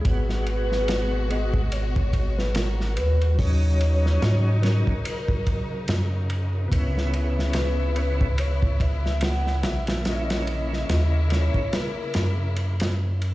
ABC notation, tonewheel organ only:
X:1
M:4/4
L:1/8
Q:"Swing 16ths" 1/4=72
K:G#m
V:1 name="Tonewheel organ"
[G,B,F]3 [G,B,F] z4 | [F,CD]3 [F,CD] z4 | [B,CE]3 [B,CE] z4 | [A,CE]3 [A,CE] z4 |]